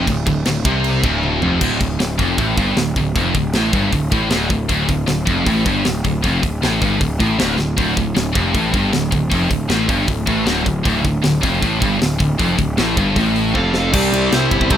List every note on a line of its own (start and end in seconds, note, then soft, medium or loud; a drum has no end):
0.07 0.26 D1 medium
0.07 0.23 D2 medium
0.07 kick medium
0.07 crash medium
0.27 0.45 D1 medium
0.27 0.43 D2 medium
0.27 kick loud
0.27 crash medium
0.45 0.64 D1 medium
0.45 0.62 D2 medium
0.45 snare loud
0.45 crash medium
0.65 1.01 C2 loud
0.65 1.03 C3 loud
0.65 kick loud
0.65 crash medium
0.84 crash medium
1.04 1.39 D1 medium
1.04 1.42 D2 loud
1.04 kick loud
1.04 crash medium
1.23 high tom medium
1.42 1.60 F1 medium
1.42 1.61 F2 loud
1.42 floor tom medium
1.61 1.80 D1 medium
1.61 1.79 D2 medium
1.61 kick loud
1.61 crash loud
1.80 1.99 D1 medium
1.80 1.96 D2 medium
1.80 kick medium
1.80 open hi-hat medium
2.00 2.18 D1 medium
2.00 2.15 D2 medium
2.00 snare medium
2.00 open hi-hat medium
2.19 2.37 F1 medium
2.19 2.38 F2 medium
2.19 kick loud
2.19 open hi-hat medium
2.38 2.57 A1 medium
2.38 2.57 A2 loud
2.38 kick loud
2.38 open hi-hat medium
2.57 2.75 G1 medium
2.57 2.76 G2 medium
2.57 kick loud
2.57 open hi-hat medium
2.77 2.95 D1 medium
2.77 2.93 D2 medium
2.77 snare loud
2.77 open hi-hat medium
2.96 3.14 D1 medium
2.96 3.12 D2 medium
2.96 kick medium
2.96 open hi-hat medium
3.16 3.34 F1 medium
3.16 3.35 F2 loud
3.16 kick loud
3.16 open hi-hat medium
3.35 3.53 D1 medium
3.35 3.50 D2 medium
3.35 kick loud
3.35 open hi-hat medium
3.53 3.72 A1 loud
3.53 3.73 A2 loud
3.53 snare loud
3.53 open hi-hat medium
3.73 3.91 G1 medium
3.73 3.92 G2 medium
3.73 kick loud
3.73 open hi-hat medium
3.92 4.11 D1 medium
3.92 4.08 D2 medium
3.92 kick medium
3.92 open hi-hat medium
4.12 4.30 A1 medium
4.12 4.30 A2 loud
4.12 kick loud
4.12 open hi-hat medium
4.30 4.49 D1 medium
4.30 4.49 D2 loud
4.30 snare loud
4.30 open hi-hat medium
4.50 4.68 D1 medium
4.50 4.66 D2 medium
4.50 kick medium
4.50 open hi-hat soft
4.69 4.88 D1 medium
4.69 4.87 D2 loud
4.69 kick loud
4.69 open hi-hat medium
4.88 5.07 D1 medium
4.88 5.04 D2 medium
4.88 kick medium
4.88 open hi-hat medium
5.07 5.26 D1 medium
5.07 5.24 D2 medium
5.07 snare medium
5.07 open hi-hat medium
5.27 5.45 F1 medium
5.27 5.46 F2 loud
5.27 kick medium
5.27 open hi-hat medium
5.46 5.65 A1 medium
5.46 5.65 A2 loud
5.46 kick loud
5.46 open hi-hat medium
5.66 5.84 G1 medium
5.66 5.85 G2 medium
5.66 kick loud
5.66 open hi-hat medium
5.85 6.03 D1 medium
5.85 6.01 D2 medium
5.85 snare loud
5.85 open hi-hat medium
6.05 6.23 D1 medium
6.05 6.20 D2 medium
6.05 kick medium
6.05 open hi-hat medium
6.24 6.42 F1 loud
6.24 6.42 F2 loud
6.24 kick medium
6.24 open hi-hat medium
6.43 6.61 D1 medium
6.43 6.59 D2 medium
6.43 kick medium
6.43 open hi-hat medium
6.62 6.81 A1 loud
6.62 6.81 A2 loud
6.62 snare medium
6.62 open hi-hat medium
6.81 7.00 G1 loud
6.81 6.99 G2 medium
6.81 kick loud
6.81 open hi-hat medium
7.00 7.19 D1 medium
7.00 7.16 D2 medium
7.00 kick medium
7.00 open hi-hat medium
7.19 7.38 A1 loud
7.19 7.38 A2 medium
7.19 kick loud
7.19 open hi-hat medium
7.39 7.57 D1 medium
7.39 7.57 D2 loud
7.39 snare loud
7.39 open hi-hat medium
7.58 7.76 D1 medium
7.58 7.74 D2 medium
7.58 snare medium
7.78 7.96 D1 medium
7.78 7.96 D2 loud
7.78 kick loud
7.78 open hi-hat medium
7.97 8.15 D1 medium
7.97 8.13 D2 medium
7.97 kick medium
7.97 open hi-hat medium
8.16 8.34 D1 medium
8.16 8.32 D2 medium
8.16 snare loud
8.16 open hi-hat medium
8.35 8.54 F1 medium
8.35 8.54 F2 loud
8.35 kick loud
8.35 open hi-hat soft
8.55 8.73 A1 medium
8.55 8.74 A2 loud
8.55 kick loud
8.55 open hi-hat medium
8.74 8.92 G1 loud
8.74 8.93 G2 loud
8.74 kick loud
8.74 open hi-hat medium
8.93 9.12 D1 medium
8.93 9.09 D2 medium
8.93 snare loud
8.93 open hi-hat medium
9.12 9.31 D1 medium
9.12 9.28 D2 medium
9.12 kick loud
9.12 open hi-hat medium
9.32 9.50 F1 loud
9.32 9.51 F2 medium
9.32 kick medium
9.32 open hi-hat medium
9.51 9.69 D1 medium
9.51 9.67 D2 medium
9.51 kick loud
9.51 open hi-hat medium
9.70 9.88 A1 medium
9.70 9.89 A2 loud
9.70 snare loud
9.70 open hi-hat medium
9.89 10.07 G1 loud
9.89 10.08 G2 loud
9.89 kick medium
9.89 open hi-hat medium
10.08 10.27 D1 medium
10.08 10.25 D2 medium
10.08 kick medium
10.08 open hi-hat medium
10.27 10.46 A1 loud
10.27 10.47 A2 loud
10.27 kick loud
10.27 open hi-hat medium
10.46 10.66 D1 medium
10.46 10.66 D2 loud
10.46 snare loud
10.46 open hi-hat medium
10.66 10.84 D1 medium
10.66 10.83 D2 medium
10.66 kick medium
10.66 open hi-hat medium
10.85 11.04 D1 medium
10.85 11.04 D2 loud
10.85 kick medium
10.85 open hi-hat medium
11.05 11.23 D1 medium
11.05 11.21 D2 medium
11.05 kick medium
11.05 open hi-hat medium
11.24 11.43 D1 medium
11.24 11.40 D2 medium
11.24 snare loud
11.24 open hi-hat medium
11.43 11.62 F1 loud
11.43 11.61 F2 medium
11.43 kick loud
11.43 open hi-hat medium
11.62 11.81 A1 medium
11.62 11.81 A2 loud
11.62 kick medium
11.62 open hi-hat medium
11.81 12.00 G1 loud
11.81 12.00 G2 medium
11.81 kick loud
11.81 open hi-hat medium
12.00 12.19 D1 medium
12.00 12.17 D2 medium
12.00 snare loud
12.00 open hi-hat medium
12.20 12.38 D1 medium
12.20 12.36 D2 medium
12.20 kick medium
12.20 open hi-hat medium
12.39 12.58 F1 loud
12.39 12.58 F2 medium
12.39 kick medium
12.39 open hi-hat medium
12.58 12.77 D1 medium
12.58 12.74 D2 medium
12.58 kick medium
12.58 open hi-hat medium
12.78 12.97 A1 medium
12.78 12.98 A2 medium
12.78 snare loud
12.78 open hi-hat medium
12.97 13.15 G1 medium
12.97 13.17 G2 medium
12.97 kick loud
12.97 open hi-hat medium
13.16 13.53 A1 medium
13.16 13.56 A2 loud
13.16 kick loud
13.16 open hi-hat medium
13.36 open hi-hat medium
13.55 13.91 F1 loud
13.55 13.94 F2 loud
13.55 13.91 A4 medium
13.55 13.92 F5 loud
13.55 kick medium
13.74 snare medium
13.93 14.09 C2 loud
13.93 14.77 C3 medium
13.93 14.13 C3 loud
13.93 14.77 G3 medium
13.93 14.14 G3 loud
13.93 14.14 C4 medium
13.93 14.77 D4 medium
13.93 14.77 E4 loud
13.93 14.29 G4 medium
13.93 14.33 D5 loud
13.93 kick loud
13.93 crash loud
14.12 14.28 C2 loud
14.12 14.33 C3 medium
14.12 14.33 G3 medium
14.12 14.34 C4 medium
14.12 ride medium
14.31 14.47 C2 medium
14.31 14.51 C3 loud
14.31 14.51 G3 loud
14.31 14.52 C4 loud
14.31 14.68 E4 medium
14.31 14.71 C5 medium
14.31 snare loud
14.31 ride loud
14.51 14.68 G1 medium
14.51 14.70 C3 medium
14.51 14.71 G3 loud
14.51 14.71 C4 medium
14.51 kick medium
14.51 ride medium
14.61 kick medium
14.70 14.77 C2 loud
14.70 14.77 C3 loud
14.70 14.77 G3 loud
14.70 14.77 C4 loud
14.70 14.77 E4 medium
14.70 14.77 C5 medium
14.70 kick loud
14.70 ride loud